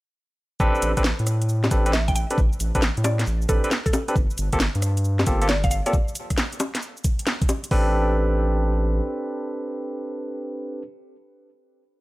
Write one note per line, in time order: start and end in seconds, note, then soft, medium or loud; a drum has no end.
0.60 0.71 A1 medium
0.60 0.91 C4 loud
0.60 0.91 D4 loud
0.60 0.91 G4 medium
0.60 0.91 A4 medium
0.60 0.91 B4 loud
0.60 kick loud
0.60 shaker soft
0.75 shaker soft
0.82 0.94 A1 medium
0.82 closed hi-hat loud
0.82 shaker medium
0.97 1.12 A1 medium
0.97 1.02 C4 medium
0.97 1.02 D4 medium
0.97 1.02 G4 medium
0.97 1.02 A4 medium
0.97 1.02 B4 loud
0.97 kick medium
0.97 closed hi-hat medium
0.97 shaker soft
1.04 snare loud
1.04 shaker soft
1.19 1.69 A2 medium
1.19 closed hi-hat soft
1.19 shaker soft
1.27 cross-stick medium
1.27 closed hi-hat loud
1.27 shaker medium
1.42 closed hi-hat medium
1.42 shaker soft
1.49 shaker soft
1.64 snare medium
1.64 high bongo medium
1.64 shaker soft
1.71 2.25 A1 medium
1.71 1.84 C4 medium
1.71 1.84 D4 medium
1.71 1.84 G4 medium
1.71 1.84 A4 medium
1.71 1.84 B4 medium
1.71 kick loud
1.71 closed hi-hat loud
1.71 shaker medium
1.86 1.91 C4 medium
1.86 1.91 D4 medium
1.86 1.91 G4 medium
1.86 1.91 A4 medium
1.86 1.91 B4 medium
1.86 closed hi-hat medium
1.86 shaker soft
1.93 2.05 E5 medium
1.93 snare loud
1.93 shaker soft
2.08 2.13 G5 medium
2.08 kick loud
2.08 closed hi-hat medium
2.08 shaker soft
2.15 2.25 G5 medium
2.15 closed hi-hat loud
2.15 shaker medium
2.30 2.39 C4 medium
2.30 2.39 D4 medium
2.30 2.39 G4 medium
2.30 2.39 A4 medium
2.30 2.39 B4 medium
2.30 closed hi-hat medium
2.30 shaker soft
2.38 2.49 A1 loud
2.38 kick loud
2.38 shaker soft
2.53 shaker soft
2.60 2.72 A1 medium
2.60 closed hi-hat loud
2.60 shaker medium
2.75 2.90 A1 medium
2.75 2.80 C4 medium
2.75 2.80 D4 medium
2.75 2.80 G4 medium
2.75 2.80 A4 medium
2.75 2.80 B4 loud
2.75 kick medium
2.75 closed hi-hat medium
2.75 shaker soft
2.82 snare loud
2.82 shaker soft
2.97 3.24 A2 medium
2.97 closed hi-hat soft
2.97 shaker soft
3.04 3.19 D5 medium
3.04 closed hi-hat loud
3.04 high bongo medium
3.04 shaker medium
3.19 snare medium
3.19 closed hi-hat medium
3.19 shaker soft
3.27 3.46 A1 medium
3.27 shaker soft
3.42 shaker soft
3.49 3.60 A1 medium
3.49 3.62 C4 medium
3.49 3.62 D4 medium
3.49 3.62 G4 medium
3.49 3.63 A4 medium
3.49 3.62 A4 medium
3.49 3.62 B4 medium
3.49 kick loud
3.49 closed hi-hat loud
3.49 shaker medium
3.64 3.69 C4 medium
3.64 3.69 D4 medium
3.64 3.69 G4 medium
3.64 3.69 A4 medium
3.64 3.69 B4 medium
3.64 closed hi-hat medium
3.64 shaker soft
3.71 snare loud
3.71 shaker soft
3.86 3.91 A4 medium
3.86 kick loud
3.86 closed hi-hat medium
3.86 shaker soft
3.93 4.03 A4 medium
3.93 closed hi-hat loud
3.93 high bongo medium
3.93 shaker medium
4.08 4.15 C4 medium
4.08 4.15 D4 medium
4.08 4.15 G4 medium
4.08 4.15 A4 medium
4.08 4.15 B4 medium
4.08 closed hi-hat medium
4.08 shaker soft
4.16 4.27 G1 loud
4.16 kick loud
4.16 shaker soft
4.30 shaker soft
4.38 4.49 G1 medium
4.38 closed hi-hat loud
4.38 shaker medium
4.53 4.68 G1 medium
4.53 4.58 A#3 medium
4.53 4.58 C4 medium
4.53 4.58 F4 medium
4.53 4.58 G4 medium
4.53 4.58 A4 loud
4.53 kick medium
4.53 closed hi-hat medium
4.53 shaker soft
4.60 snare loud
4.60 shaker soft
4.75 5.24 G2 medium
4.75 closed hi-hat soft
4.75 shaker soft
4.82 cross-stick medium
4.82 closed hi-hat loud
4.82 shaker medium
4.97 closed hi-hat medium
4.97 shaker soft
5.04 shaker soft
5.19 snare medium
5.19 high bongo medium
5.19 shaker soft
5.27 5.80 G1 medium
5.27 5.39 A#3 medium
5.27 5.39 C4 medium
5.27 5.39 F4 medium
5.27 5.39 G4 medium
5.27 5.39 A4 medium
5.27 kick loud
5.27 closed hi-hat loud
5.27 shaker medium
5.42 5.46 A#3 medium
5.42 5.46 C4 medium
5.42 5.46 F4 medium
5.42 5.46 G4 medium
5.42 5.46 A4 medium
5.42 closed hi-hat medium
5.42 shaker soft
5.49 5.61 D5 medium
5.49 snare loud
5.49 shaker soft
5.64 5.69 F5 medium
5.64 kick loud
5.64 closed hi-hat medium
5.64 shaker soft
5.71 5.81 F5 medium
5.71 closed hi-hat loud
5.71 shaker medium
5.86 5.94 A#3 medium
5.86 5.94 C4 medium
5.86 5.94 F4 medium
5.86 5.94 G4 medium
5.86 5.94 A4 medium
5.86 5.92 D5 medium
5.86 closed hi-hat medium
5.86 shaker soft
5.93 kick loud
5.93 shaker soft
6.08 shaker soft
6.15 closed hi-hat loud
6.15 shaker medium
6.30 kick medium
6.30 cross-stick medium
6.30 closed hi-hat medium
6.30 shaker soft
6.38 snare loud
6.38 shaker soft
6.53 closed hi-hat soft
6.53 shaker soft
6.60 closed hi-hat loud
6.60 high bongo medium
6.60 shaker medium
6.75 snare medium
6.75 closed hi-hat medium
6.75 shaker soft
6.82 shaker soft
6.97 shaker soft
7.04 kick loud
7.04 closed hi-hat loud
7.04 shaker medium
7.19 closed hi-hat medium
7.19 shaker soft
7.27 snare loud
7.27 shaker soft
7.42 kick loud
7.42 closed hi-hat soft
7.42 shaker soft
7.49 closed hi-hat loud
7.49 high bongo medium
7.49 shaker medium
7.64 closed hi-hat medium
7.64 shaker soft
7.71 9.01 A1 loud
7.71 10.82 C4 medium
7.71 10.82 D4 medium
7.71 10.82 G4 medium
7.71 10.82 A4 medium
7.71 10.82 B4 loud
7.71 kick loud
7.71 open hi-hat medium